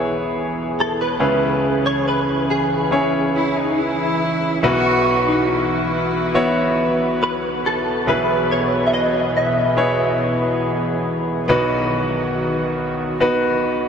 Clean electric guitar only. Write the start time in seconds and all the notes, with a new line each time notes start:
0.80 A4
1.01 B4
1.86 C#5
2.08 B4
2.50 G#4
7.23 B4
7.66 A4
8.09 B4
8.52 C#5
8.87 E5
8.93 D#5
9.37 E5